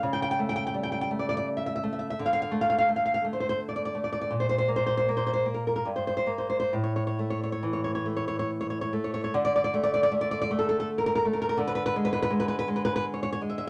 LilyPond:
\new Staff \with { instrumentName = "Nylon-string guitar" } { \time 3/4 \key d \minor \tempo 4 = 82 << { r32 g''32 g''32 g''32 r32 g''32 g''32 g''32 r32 g''32 g''32 g''32 r32 d''32 d''32 d''32 r32 e''32 e''32 e''32 r32 e''32 e''32 e''32 | r32 f''32 f''32 f''32 r32 f''32 f''32 f''32 r32 f''32 f''32 f''32 r32 c''32 c''32 c''32 r32 d''32 d''32 d''32 r32 d''32 d''32 d''32 | r32 c''32 c''32 c''32 r32 c''32 c''32 c''32 r32 c''32 c''32 c''32 r32 bes'32 bes'32 bes'32 r32 c''32 c''32 c''32 r32 c''32 c''32 c''32 | r32 cis''32 cis''32 cis''32 r32 cis''32 cis''32 cis''32 r32 cis''32 cis''32 cis''32 r32 cis''32 cis''32 cis''32 r32 cis''32 cis''32 cis''32 r32 cis''32 cis''32 cis''32 |
r32 d''32 d''32 d''32 r32 d''32 d''32 d''32 r32 d''32 d''32 d''32 r32 a'32 a'32 a'32 r32 bes'32 bes'32 bes'32 r32 bes'32 bes'32 bes'32 | r32 b'32 b'32 b'32 r32 b'32 b'32 b'32 r32 b'32 b'32 b'32 r32 b'32 b'32 b'32 r32 cis''32 cis''32 cis''32 r32 e''32 e''32 r32 | } \\ { cis8 a8 g8 a4 a8 | d8 a8 a8 a4 a8 | bes,8 bes8 bes8 bes8 g,8 bes8 | a,8 a8 e8 a4 a8 |
d8 a8 a8 a4 a8 | d8 gis8 gis8 gis4 gis8 | } >> }